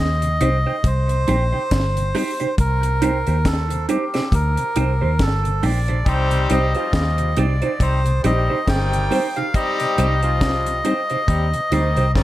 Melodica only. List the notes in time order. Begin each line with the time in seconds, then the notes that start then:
0.00 D#5
0.86 C5
2.60 A#4
3.47 A4
3.90 G4
4.34 A#4
5.22 A4
5.65 D5
6.08 C5
6.52 D#5
6.95 D#5
7.39 D5
7.82 C5
8.25 D#5
8.68 G5
9.36 F5
9.55 D#5